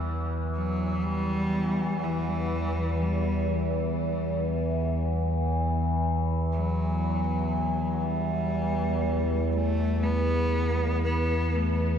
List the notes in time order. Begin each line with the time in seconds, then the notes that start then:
Already playing: E2 E3
0.55 F#3
1.05 G3
2.04 E3
3.01 G3
6.52 F#3
8.02 G3
9.52 A3
10.03 B3
11.04 B3
11.55 A3